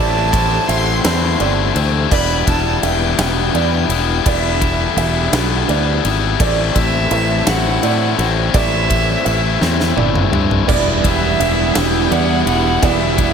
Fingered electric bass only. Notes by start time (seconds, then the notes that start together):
Already playing: A1
0.68 A1
1.04 E2
1.40 G1
1.75 D2
2.11 E1
2.47 E1
2.83 E1
3.18 E1
3.54 E2
3.89 E1
4.26 E1
4.96 E1
5.32 B1
5.68 D2
6.05 G#1
6.40 A1
6.75 A1
7.11 A1
7.47 A1
7.83 A2
8.18 A1
8.54 A1
9.26 A1
9.61 E2
9.96 G1
10.32 G2
10.69 E1
11.04 E1
11.40 E1
11.76 E1
12.11 E2
12.46 E1
12.83 E1